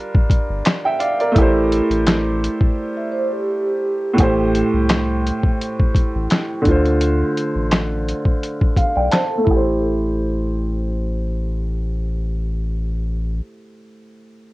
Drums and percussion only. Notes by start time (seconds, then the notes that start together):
0.15 kick
0.30 kick, closed hi-hat
0.65 snare, clap, closed hi-hat
1.00 closed hi-hat
1.20 closed hi-hat
1.36 kick, closed hi-hat
1.72 closed hi-hat
1.91 closed hi-hat
2.07 snare, clap, closed hi-hat
2.44 closed hi-hat
2.61 kick
4.18 kick, closed hi-hat
4.55 closed hi-hat
4.89 snare, clap, closed hi-hat
5.27 closed hi-hat
5.43 kick
5.61 closed hi-hat
5.80 kick
5.95 kick, closed hi-hat
6.30 snare, clap, closed hi-hat
6.65 kick, closed hi-hat
6.85 closed hi-hat
7.01 closed hi-hat
7.37 closed hi-hat
7.71 snare, clap, closed hi-hat
8.09 closed hi-hat
8.25 kick
8.43 closed hi-hat
8.61 kick
8.76 kick, closed hi-hat
9.11 snare, clap, closed hi-hat
9.47 kick